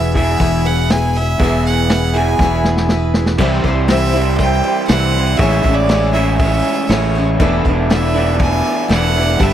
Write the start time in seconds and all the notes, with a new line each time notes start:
Already playing: E1 E2 B2 E3 B3 E4 G#4 B4 E5
0.14 E2 B2 E3 B3 E4 G#4 B4 E5, kick, open hi-hat
0.19 E4 G#4
0.40 E1 E3 B3 E4 G#4, kick, open hi-hat
0.44 B4
0.65 G#4 B4 F#5, open hi-hat
0.69 E4
0.90 B3 E4 G#4 G#5, snare, open hi-hat
0.95 B4
1.15 B4 E5, open hi-hat
1.20 E4 G#4
1.38 E1 E2 B2 G#4 B4 E5, kick, open hi-hat
1.43 E3 B3 E4 G#4 B4
1.65 F#5, open hi-hat
1.90 snare, open hi-hat
2.13 E2 B2 E3 B3 E4 G#4 B4 G#5, open hi-hat
2.17 E4 G#4
2.39 E1 E3 B3, kick, snare
2.43 E4 G#4 B4
2.64 G#4 B4, snare
2.69 E4
2.77 snare
2.89 B3 E4 G#4 B4, snare
3.14 B4, snare
3.18 E4 G#4
3.26 snare
3.37 C2 C3 E3 G3 C4 E4 G4 C5 E5, kick, crash
3.42 C5
3.64 C2 C4 E4 C5, kick, crash
3.68 G3
3.88 C3 E3 G3 C4 E4 C5 E5, snare, crash
4.12 C3 E3 G3 C4 E4 C5, crash
4.38 G3 C4 G5, kick, crash
4.43 E4 C5
4.64 G4 C5 E5, crash
4.88 C2 C3 E3 F#5, snare, crash
4.92 G3 C4 E4 C5
5.14 E4 C5, crash
5.18 G3 C4
5.37 A1 C#3 E4 G#4 E5 C#6, kick, crash
5.41 A2 E3 G#3 C#4 E4 C#5
5.64 A1 E4 C#5, kick, crash
5.68 G#3 C#4
5.74 D5
5.89 A2 E3 G#3 C#4 E4 C#5, snare, crash
6.13 A2 E3 C#4 E4 C#5 E5, crash
6.17 G#3 C#4 E4
6.37 E5, kick, crash
6.42 G#3 C#4 E4 C#5
6.64 crash
6.89 A1 A2 E3 G#3 C#4 E4 C#5, snare, crash
7.15 G#3 C#4 E4 C#5, crash
7.38 E1 E2 B2 E3 A3 D4 E4 A4 B4 D5, kick, crash
7.65 E1 D4 E4 B4, kick, crash
7.90 E3 A3 D4 E4 B4 E5, snare, crash
8.14 E2 B2 E3 A3 D4 E4 B4, crash
8.39 A3 D4 E4 B4 G#5, kick, crash
8.65 crash
8.88 E1 E2 B2 E3 A3 D4 E4 B4, snare, crash
8.92 F#5
9.14 D4 E4 B4, crash
9.39 G1 G3 B3 D4 G4 A4 B4, kick, crash
9.44 E5